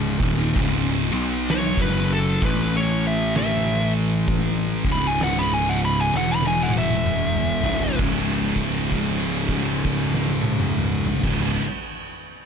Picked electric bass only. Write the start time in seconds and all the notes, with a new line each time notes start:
Already playing: C#1
0.20 D#1
0.56 C#1
1.13 B1
1.78 F#1
2.42 A1
4.85 C#1
6.14 E1
7.64 C#1
7.99 C#1
11.23 C#1